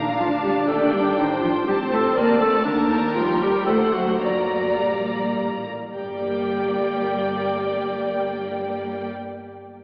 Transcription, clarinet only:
0.20 F4
0.43 G4
0.68 A4
0.93 G4
1.18 D#4
1.42 F4
1.67 G4
1.92 A4
2.17 A#4
2.41 A4
2.65 D4
2.90 D#4
3.15 F4
3.42 G4
3.66 A4
3.93 F#4
4.19 F#4
4.76 G4
5.94 G4

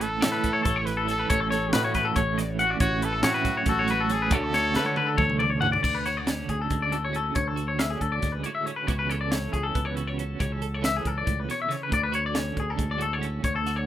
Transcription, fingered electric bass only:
Already playing: A1
0.24 A2
0.66 A1
1.30 A1
1.75 A2
2.16 A1
2.80 A1
3.24 A2
3.67 A1
4.32 D2
4.76 D3
5.18 D2
5.84 D2
6.50 D2
6.71 D2
7.36 D2
8.01 D2
8.23 D2
8.88 C#2
9.53 C#2
9.75 C#2
10.41 C#2
11.06 C#2
11.27 C#2
11.92 D2
12.57 D2
12.79 D2
13.44 D2

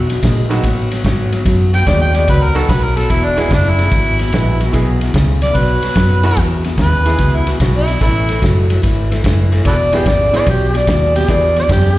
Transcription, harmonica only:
1.75 G5
1.87 D5
2.02 G5
2.16 D5
2.30 B4
2.44 A#4
2.56 A4
2.70 B4
2.83 A#4
2.97 A4
3.10 E4
3.24 D4
3.40 E4
3.54 D4
3.69 E4
5.43 D5
5.57 B4
6.26 B4
6.81 B4
7.35 E4
7.77 E4
8.03 E4
9.67 A4 B4 D5
9.95 G4
10.08 D5
10.36 D5
10.50 G4
10.77 D5
10.89 D5
11.16 G4
11.31 D5
11.59 D5
11.72 G4

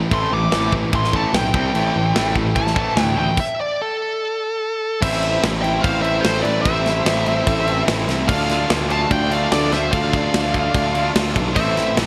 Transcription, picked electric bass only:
0.11 A1
0.31 A1
0.52 A1
0.93 A1
1.34 B1
1.54 C2
1.75 A1
1.96 A1
2.16 A1
2.56 A1
2.96 D2
5.02 A1
5.44 A1
5.84 A1
6.25 A1
6.45 A1
6.66 A1
7.05 A1
7.47 A1
7.88 A1
8.08 C2
8.29 D2
8.70 D2
9.11 D2
9.52 D2
9.73 D2
9.93 D2
10.34 D2
10.74 D2
11.16 D2
11.36 B1
11.56 A1
11.97 A1

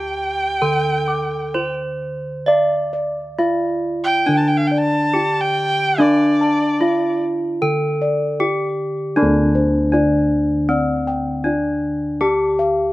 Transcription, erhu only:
Already playing: G5
4.04 G5
4.37 A5
4.48 G5
4.57 F5
4.67 G5
4.77 A5
5.41 G5
6.00 D5

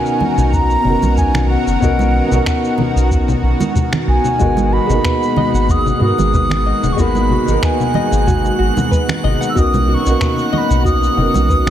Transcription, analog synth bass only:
0.38 B1
0.85 F#1
1.02 B1
1.67 F#1
1.82 B1
2.31 B1
2.96 B1
3.43 B1
4.08 B1
4.40 G#1
4.89 G#1
5.53 G#1
6.01 G#2
6.18 G#1
6.83 D#1
6.98 G#1
7.48 G#1
8.12 G#1
8.59 G#1
9.24 G#1
9.56 B1
10.06 B1
10.70 B1
11.17 F#1
11.34 B1

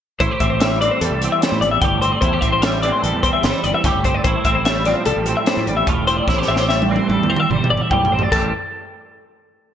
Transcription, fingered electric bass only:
0.21 A1
0.41 A1
1.01 E2
1.11 C2
1.52 A2
1.61 A1
1.82 G1
2.22 E2
2.42 A1
3.03 A1
3.13 E2
3.43 G1
3.64 G1
3.84 G1
3.95 G1
4.25 A1
4.45 A1
5.07 C2
5.17 A1
5.57 A2
5.67 A1
5.87 E1
6.27 A1
6.49 A1
7.09 A1
7.19 E2
7.50 G1
7.71 G1
7.91 B1
8.12 A1
8.32 A1

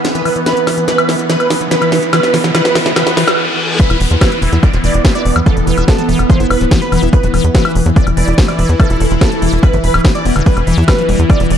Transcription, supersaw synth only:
0.15 B4
0.46 B4
0.88 B4
1.30 B4
1.71 B4
2.13 B4
2.55 B4
2.96 B4
3.17 B4
3.80 B4
4.21 B4
4.63 D5
4.84 D5
5.15 D5
5.46 A4
5.88 A4
6.30 C5
6.50 B4
6.82 B4
7.13 B4
7.55 B4
7.96 D5
8.17 D5
8.48 D5
8.80 A4
9.21 A4
9.63 B4
9.84 B4
10.15 D5
10.46 B4
10.88 B4
11.30 D5
11.50 D5

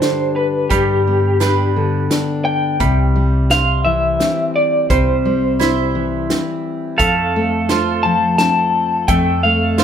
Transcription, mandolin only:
Already playing: G3 D4 G5
0.70 G3
1.40 D4 B4 G5
2.80 G3
3.51 C5
4.90 G3
5.60 E4 C5 E5
6.99 A3
7.69 F4 C5 F5
9.09 A3
9.78 F4 C5 F5

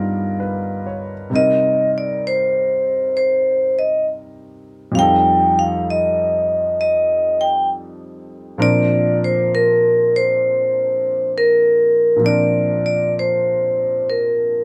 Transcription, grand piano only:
Already playing: G2 G3 B3 D#4 F4 A#4
0.40 B4
0.87 C#5
1.30 C3 G3 C4 D#4
1.35 A#4
4.92 F2 F3
4.97 G3 D#4
5.02 A4
8.58 A#2 F3 C4 D4 A#4
12.16 A#2 F3
12.22 C4 D4
12.27 A#4

